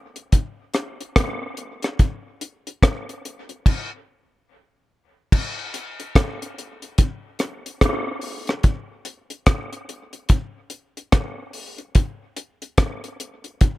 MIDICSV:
0, 0, Header, 1, 2, 480
1, 0, Start_track
1, 0, Tempo, 831025
1, 1152, Time_signature, 4, 2, 24, 8
1, 7960, End_track
2, 0, Start_track
2, 0, Title_t, "Drums"
2, 92, Note_on_c, 9, 42, 43
2, 149, Note_off_c, 9, 42, 0
2, 187, Note_on_c, 9, 42, 93
2, 189, Note_on_c, 9, 36, 96
2, 245, Note_off_c, 9, 42, 0
2, 247, Note_off_c, 9, 36, 0
2, 425, Note_on_c, 9, 42, 63
2, 430, Note_on_c, 9, 37, 73
2, 483, Note_off_c, 9, 42, 0
2, 488, Note_off_c, 9, 37, 0
2, 581, Note_on_c, 9, 42, 46
2, 639, Note_off_c, 9, 42, 0
2, 670, Note_on_c, 9, 36, 109
2, 670, Note_on_c, 9, 37, 116
2, 672, Note_on_c, 9, 42, 88
2, 727, Note_off_c, 9, 37, 0
2, 728, Note_off_c, 9, 36, 0
2, 730, Note_off_c, 9, 42, 0
2, 907, Note_on_c, 9, 42, 51
2, 965, Note_off_c, 9, 42, 0
2, 1054, Note_on_c, 9, 42, 51
2, 1065, Note_on_c, 9, 37, 67
2, 1112, Note_off_c, 9, 42, 0
2, 1122, Note_off_c, 9, 37, 0
2, 1151, Note_on_c, 9, 42, 73
2, 1152, Note_on_c, 9, 36, 106
2, 1209, Note_off_c, 9, 42, 0
2, 1210, Note_off_c, 9, 36, 0
2, 1393, Note_on_c, 9, 42, 67
2, 1451, Note_off_c, 9, 42, 0
2, 1542, Note_on_c, 9, 42, 56
2, 1599, Note_off_c, 9, 42, 0
2, 1632, Note_on_c, 9, 36, 104
2, 1634, Note_on_c, 9, 42, 80
2, 1636, Note_on_c, 9, 37, 104
2, 1690, Note_off_c, 9, 36, 0
2, 1691, Note_off_c, 9, 42, 0
2, 1694, Note_off_c, 9, 37, 0
2, 1786, Note_on_c, 9, 42, 41
2, 1844, Note_off_c, 9, 42, 0
2, 1878, Note_on_c, 9, 42, 55
2, 1936, Note_off_c, 9, 42, 0
2, 2017, Note_on_c, 9, 42, 42
2, 2075, Note_off_c, 9, 42, 0
2, 2113, Note_on_c, 9, 36, 106
2, 2115, Note_on_c, 9, 49, 81
2, 2171, Note_off_c, 9, 36, 0
2, 2172, Note_off_c, 9, 49, 0
2, 3075, Note_on_c, 9, 36, 108
2, 3076, Note_on_c, 9, 49, 101
2, 3132, Note_off_c, 9, 36, 0
2, 3134, Note_off_c, 9, 49, 0
2, 3315, Note_on_c, 9, 42, 78
2, 3373, Note_off_c, 9, 42, 0
2, 3464, Note_on_c, 9, 42, 54
2, 3521, Note_off_c, 9, 42, 0
2, 3555, Note_on_c, 9, 36, 122
2, 3556, Note_on_c, 9, 42, 91
2, 3559, Note_on_c, 9, 37, 120
2, 3613, Note_off_c, 9, 36, 0
2, 3614, Note_off_c, 9, 42, 0
2, 3617, Note_off_c, 9, 37, 0
2, 3709, Note_on_c, 9, 42, 51
2, 3767, Note_off_c, 9, 42, 0
2, 3803, Note_on_c, 9, 42, 58
2, 3861, Note_off_c, 9, 42, 0
2, 3941, Note_on_c, 9, 42, 46
2, 3998, Note_off_c, 9, 42, 0
2, 4032, Note_on_c, 9, 42, 109
2, 4035, Note_on_c, 9, 36, 112
2, 4090, Note_off_c, 9, 42, 0
2, 4093, Note_off_c, 9, 36, 0
2, 4269, Note_on_c, 9, 42, 64
2, 4274, Note_on_c, 9, 37, 70
2, 4326, Note_off_c, 9, 42, 0
2, 4332, Note_off_c, 9, 37, 0
2, 4424, Note_on_c, 9, 42, 55
2, 4482, Note_off_c, 9, 42, 0
2, 4512, Note_on_c, 9, 37, 122
2, 4514, Note_on_c, 9, 36, 110
2, 4515, Note_on_c, 9, 42, 94
2, 4570, Note_off_c, 9, 37, 0
2, 4571, Note_off_c, 9, 36, 0
2, 4573, Note_off_c, 9, 42, 0
2, 4745, Note_on_c, 9, 46, 55
2, 4803, Note_off_c, 9, 46, 0
2, 4894, Note_on_c, 9, 42, 51
2, 4905, Note_on_c, 9, 37, 70
2, 4952, Note_off_c, 9, 42, 0
2, 4962, Note_off_c, 9, 37, 0
2, 4987, Note_on_c, 9, 42, 76
2, 4991, Note_on_c, 9, 36, 115
2, 5045, Note_off_c, 9, 42, 0
2, 5049, Note_off_c, 9, 36, 0
2, 5227, Note_on_c, 9, 42, 77
2, 5285, Note_off_c, 9, 42, 0
2, 5372, Note_on_c, 9, 42, 53
2, 5430, Note_off_c, 9, 42, 0
2, 5465, Note_on_c, 9, 42, 92
2, 5468, Note_on_c, 9, 36, 126
2, 5468, Note_on_c, 9, 37, 107
2, 5523, Note_off_c, 9, 42, 0
2, 5525, Note_off_c, 9, 37, 0
2, 5526, Note_off_c, 9, 36, 0
2, 5618, Note_on_c, 9, 42, 47
2, 5676, Note_off_c, 9, 42, 0
2, 5712, Note_on_c, 9, 42, 64
2, 5770, Note_off_c, 9, 42, 0
2, 5850, Note_on_c, 9, 42, 43
2, 5908, Note_off_c, 9, 42, 0
2, 5942, Note_on_c, 9, 42, 92
2, 5948, Note_on_c, 9, 36, 116
2, 6000, Note_off_c, 9, 42, 0
2, 6006, Note_off_c, 9, 36, 0
2, 6180, Note_on_c, 9, 42, 66
2, 6238, Note_off_c, 9, 42, 0
2, 6337, Note_on_c, 9, 42, 55
2, 6395, Note_off_c, 9, 42, 0
2, 6425, Note_on_c, 9, 37, 127
2, 6428, Note_on_c, 9, 36, 113
2, 6428, Note_on_c, 9, 42, 94
2, 6483, Note_off_c, 9, 37, 0
2, 6485, Note_off_c, 9, 36, 0
2, 6485, Note_off_c, 9, 42, 0
2, 6662, Note_on_c, 9, 46, 54
2, 6719, Note_off_c, 9, 46, 0
2, 6806, Note_on_c, 9, 42, 51
2, 6864, Note_off_c, 9, 42, 0
2, 6901, Note_on_c, 9, 42, 93
2, 6905, Note_on_c, 9, 36, 117
2, 6959, Note_off_c, 9, 42, 0
2, 6963, Note_off_c, 9, 36, 0
2, 7142, Note_on_c, 9, 42, 78
2, 7200, Note_off_c, 9, 42, 0
2, 7289, Note_on_c, 9, 42, 55
2, 7346, Note_off_c, 9, 42, 0
2, 7379, Note_on_c, 9, 42, 90
2, 7381, Note_on_c, 9, 36, 115
2, 7382, Note_on_c, 9, 37, 116
2, 7437, Note_off_c, 9, 42, 0
2, 7439, Note_off_c, 9, 36, 0
2, 7440, Note_off_c, 9, 37, 0
2, 7531, Note_on_c, 9, 42, 46
2, 7589, Note_off_c, 9, 42, 0
2, 7624, Note_on_c, 9, 42, 66
2, 7682, Note_off_c, 9, 42, 0
2, 7764, Note_on_c, 9, 42, 46
2, 7822, Note_off_c, 9, 42, 0
2, 7860, Note_on_c, 9, 42, 89
2, 7863, Note_on_c, 9, 36, 113
2, 7917, Note_off_c, 9, 42, 0
2, 7921, Note_off_c, 9, 36, 0
2, 7960, End_track
0, 0, End_of_file